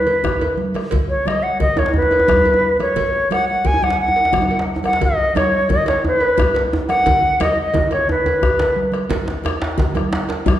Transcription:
Already playing: B4
0.06 cowbell, djembe slap, low conga
0.24 bombo rim, bombo low, djembe slap, djembe tone, djembe bass, low conga
0.41 cowbell, djembe slap, djembe tone, low conga
0.57 high conga
0.74 bombo rim, cowbell, high conga, djembe tone
0.91 bombo low, cowbell, djembe slap, djembe bass, low conga
1.09 C#5
1.26 D#5, bombo rim, djembe tone, high conga
1.43 F#5
1.60 D#5, bombo low, cowbell, djembe slap, djembe bass, low conga
1.77 C#5, bombo rim, cowbell, djembe tone, high conga
1.86 djembe slap
1.94 B4, djembe slap, djembe bass
2.02 djembe tone
2.11 bombo rim, cowbell, djembe tone
2.19 djembe tone
2.28 bombo rim, bombo low, djembe slap, high conga, djembe tone, low conga, djembe bass
2.37 djembe bass
2.45 cowbell, djembe slap, djembe tone
2.54 djembe tone
2.79 C#5, bombo rim, cowbell, djembe tone, high conga
2.96 bombo low, cowbell, djembe slap, djembe bass, low conga
3.31 F#5, bombo rim, cowbell, djembe tone, high conga
3.48 F#5
3.65 G#5, bombo low, cowbell, djembe slap, djembe bass, low conga
3.74 djembe tone
3.82 F#5, bombo rim, djembe tone, high conga
3.90 djembe slap
3.99 F#5, djembe slap
4.08 djembe tone
4.16 bombo rim, cowbell
4.25 djembe slap
4.33 bombo rim, bombo low, djembe slap, high conga, djembe tone, low conga, djembe bass
4.42 djembe tone
4.50 cowbell, djembe slap
4.59 djembe slap
4.76 djembe tone
4.83 F#5, bombo rim, cowbell, high conga, djembe tone
4.93 djembe slap
5.01 D#5, bombo low, cowbell, djembe slap, low conga, djembe bass
5.35 C#5, bombo rim, cowbell, high conga, djembe tone
5.69 D#5, bombo low, cowbell, djembe slap, djembe tone, low conga, djembe bass
5.86 C#5, bombo rim, cowbell, djembe slap, djembe tone
6.04 B4, djembe slap, djembe tone
6.21 bombo rim, cowbell
6.38 bombo rim, bombo low, djembe slap, high conga, djembe tone, low conga, djembe bass
6.55 cowbell, djembe slap
6.56 djembe slap
6.73 djembe tone
6.89 F#5, bombo rim, cowbell, high conga
7.06 bombo low, cowbell, djembe slap, high conga, djembe tone, low conga, djembe bass
7.40 D#5, bombo rim, cowbell, high conga, djembe tone
7.56 high conga
7.61 D#5
7.74 bombo rim, bombo low, cowbell, djembe slap, djembe tone, low conga, djembe bass
7.91 C#5, bombo rim, cowbell, djembe tone
8.09 B4, djembe tone
8.24 cowbell, djembe tone, low conga
8.41 bombo rim, bombo low, djembe slap, djembe tone, low conga, djembe bass
8.59 cowbell, djembe slap, low conga
8.76 djembe slap, high conga
8.92 bombo rim, cowbell, high conga
9.10 bombo low, cowbell, djembe slap, low conga, djembe bass
9.28 djembe slap
9.44 cowbell, djembe tone
9.45 bombo rim, djembe tone
9.62 djembe slap
9.78 bombo low, cowbell, djembe slap, low conga, djembe bass
9.79 djembe slap
9.95 bombo rim, cowbell, high conga, djembe tone
10.12 djembe slap
10.29 bombo rim, cowbell, djembe slap
10.46 bombo rim, bombo low, djembe slap, high conga, djembe tone, low conga, djembe bass

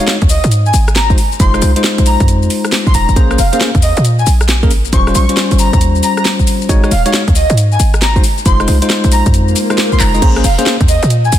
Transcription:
0.00 G#3 D#4 F#4 C#5
0.08 snare, closed hi-hat, shaker
0.22 C#2, kick, closed hi-hat, shaker
0.29 D#5, open hi-hat, shaker
0.44 G#2, closed hi-hat, shaker
0.52 closed hi-hat, shaker
0.66 G#5, shaker
0.74 G#1, open hi-hat, shaker
0.88 cross-stick, shaker
0.96 A#5, snare, closed hi-hat, shaker
1.10 G#3 D#4 F#4 C5, kick, shaker
1.18 open hi-hat, shaker
1.32 shaker
1.40 F1 G#3 D#4 F4 C5 C6, kick, closed hi-hat, shaker
1.54 G#3 D#4 F4 C5, cross-stick, shaker
1.62 C2, open hi-hat, shaker
1.76 G#3 D#4 F4 C5, closed hi-hat, shaker
1.84 snare, closed hi-hat, shaker
1.98 A#1, closed hi-hat, shaker
2.06 A#5, open hi-hat, shaker
2.20 F2, kick, closed hi-hat, shaker
2.28 closed hi-hat, shaker
2.42 shaker
2.50 open hi-hat, shaker
2.65 cross-stick, shaker
2.72 snare, open hi-hat, shaker
2.87 G#1 C6, kick, shaker
2.94 D#1 A#5, open hi-hat, shaker
3.09 F1, shaker
3.16 A#1 A#3 C#4 G#4 C5, kick, closed hi-hat, shaker
3.31 A#3 C#4 G#4 C5, cross-stick, shaker
3.38 F1 F5, open hi-hat, shaker
3.53 A#3 C#4 G#4 C5 F5, closed hi-hat, shaker
3.61 snare, closed hi-hat, shaker
3.75 D#2, kick, closed hi-hat, shaker
3.82 D#5, open hi-hat, shaker
3.97 A#2, closed hi-hat, shaker
4.05 closed hi-hat, shaker
4.19 G#5, shaker
4.27 A#1, open hi-hat, shaker
4.41 cross-stick, shaker
4.49 snare, closed hi-hat, shaker
4.63 A#3 C#4 G#4 A#4, kick, shaker
4.71 open hi-hat, shaker
4.85 shaker
4.93 D#1 G3 C#4 F4 C5 C#6, kick, closed hi-hat, shaker
5.07 G3 C#4 F4 C5, cross-stick, shaker
5.15 A#1 C#6, open hi-hat, shaker
5.29 G3 C#4 F4 C5, closed hi-hat, shaker
5.37 snare, closed hi-hat, shaker
5.51 G1, closed hi-hat, shaker
5.59 A#5, open hi-hat, shaker
5.73 D#2 A#5, kick, closed hi-hat, shaker
5.81 closed hi-hat, shaker
5.95 shaker
6.03 A#5, open hi-hat, shaker
6.17 A#5, cross-stick, shaker
6.25 snare, open hi-hat, shaker
6.40 kick, shaker
6.47 open hi-hat, shaker
6.62 shaker
6.69 G#1 G#3 D#4 F#4 C#5, kick, closed hi-hat, shaker
6.84 G#3 D#4 F#4 C#5, cross-stick, shaker
6.91 D#1 F5, open hi-hat, shaker
7.06 G#3 D#4 F#4 C#5 F5, closed hi-hat, shaker
7.13 snare, closed hi-hat, shaker
7.28 C#2, kick, closed hi-hat, shaker
7.35 D#5, open hi-hat, shaker
7.50 G#2, closed hi-hat, shaker
7.58 closed hi-hat, shaker
7.72 G#5, shaker
7.80 G#1, open hi-hat, shaker
7.94 cross-stick, shaker
8.02 A#5, snare, closed hi-hat, shaker
8.16 G#3 D#4 F#4 C5, kick, shaker
8.24 open hi-hat, shaker
8.38 shaker
8.46 F1 G#3 D#4 F4 C5 C6, kick, closed hi-hat, shaker
8.60 G#3 D#4 F4 C5, cross-stick, shaker
8.68 C2, open hi-hat, shaker
8.82 G#3 D#4 F4 C5, closed hi-hat, shaker
8.90 snare, closed hi-hat, shaker
9.04 A#1, closed hi-hat, shaker
9.12 A#5, open hi-hat, shaker
9.26 F2, kick, closed hi-hat, shaker
9.34 closed hi-hat, swell, shaker
9.48 shaker
9.56 open hi-hat, shaker
9.70 G#3 D#4 F4 C5, cross-stick, shaker
9.78 snare, open hi-hat, shaker
9.92 C6, kick, shaker
10.00 F1 A#5, clap, open hi-hat, shaker
10.14 G#3 D#4 F4 D#5, shaker
10.22 A#1 A#3 C#4 G#4 C5, kick, closed hi-hat, crash, shaker
10.36 A#3 C#4 G#4 C5, cross-stick, shaker
10.44 F1 F5, open hi-hat, shaker
10.58 A#3 C#4 G#4 C5 F5, closed hi-hat, shaker
10.66 snare, closed hi-hat, shaker
10.81 D#2, kick, closed hi-hat, shaker
10.88 D#5, open hi-hat, shaker
11.03 A#2, closed hi-hat, shaker
11.10 closed hi-hat, shaker
11.25 G#5, shaker
11.32 A#1, open hi-hat, shaker

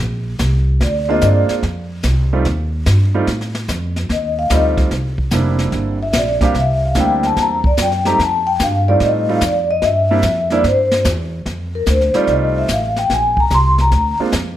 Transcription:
0.00 A#1
0.39 C2, kick, snare, hi-hat pedal
0.80 D2 D5, brush sweep, kick, snare
1.09 G#3 A#3 C4 D4 F4 D#5
1.21 G2 D5, kick, snare, hi-hat pedal
1.49 muted upright bass stroke, snare
1.63 F2, brush sweep, kick, snare
2.03 C2, kick, snare, hi-hat pedal
2.33 G3 A3 C4 D#4 F4
2.45 D#2, brush sweep, kick, snare
2.86 G2, kick, snare, hi-hat pedal
3.14 G3 A3 C4 D#4 F4
3.27 A2, brush sweep, kick, snare
3.41 snare
3.55 snare
3.68 F2, kick, snare, hi-hat pedal
3.96 snare
4.09 D#2 D#5, brush sweep, kick, snare
4.39 F5
4.50 D2 G3 A3 C4 D#4 F4 D#5, kick, snare, hi-hat pedal
4.77 kick, snare
4.91 C2, brush sweep, kick, snare
5.18 kick
5.31 F1 G3 A#3 C4 D4 E4, kick, snare, hi-hat pedal
5.59 snare
5.72 G1, brush sweep, kick, snare
6.03 E5
6.13 A#1, kick, snare, hi-hat pedal
6.18 D5
6.41 G3 A#3 C4 D4 G4 F5, kick, snare
6.54 C2, brush sweep, kick, snare
6.59 E5
6.86 F5
6.95 D2 G3 A#3 C4 D4 E4, kick, snare, hi-hat pedal
7.00 G5
7.23 A5, snare
7.37 E2, brush sweep, kick, snare
7.41 A#5
7.64 D5, kick
7.77 F#2, kick, snare, hi-hat pedal
7.82 G5
7.92 snare
8.05 G3 A3 C4 D#4 G4 A#5, snare
8.19 F2 A5, brush sweep, kick, snare
8.47 G5
8.59 G2 F5, kick, snare, hi-hat pedal
8.88 G3 A3 C4 D#4 F4 D5
9.00 A2, brush sweep, kick, snare
9.05 D#5
9.29 G3 A3 C4 D#4 F4 F5
9.41 F2, kick, snare, hi-hat pedal
9.46 D5
9.71 D#5
9.82 G2 E5, brush sweep, kick, snare
10.11 G3 A#3 C4 D4 E4
10.22 F2, kick, snare, hi-hat pedal
10.50 G3 A#3 C4 D4 E4 D5, snare
10.64 G2 C5, brush sweep, kick, snare
10.91 snare
11.05 E2, kick, snare, hi-hat pedal
11.46 F2, brush sweep, kick, snare
11.75 A#4
11.86 D2, kick, snare, hi-hat pedal
11.90 C5
12.01 snare
12.14 G3 A3 C4 D#4 F4 D5, snare
12.27 C2, brush sweep, kick, snare
12.31 D#5
12.58 E5
12.68 A1, kick, snare, hi-hat pedal
12.73 F5
12.96 G5, snare
13.10 A#1, brush sweep, kick, snare
13.14 G#5
13.37 A#5, kick
13.50 C2 C6, kick, snare, hi-hat pedal
13.78 A#5, snare
13.91 D2, brush sweep, kick, snare
14.19 G#3 A#3 C4 D4 F4, muted upright bass stroke
14.32 F2, kick, snare, hi-hat pedal

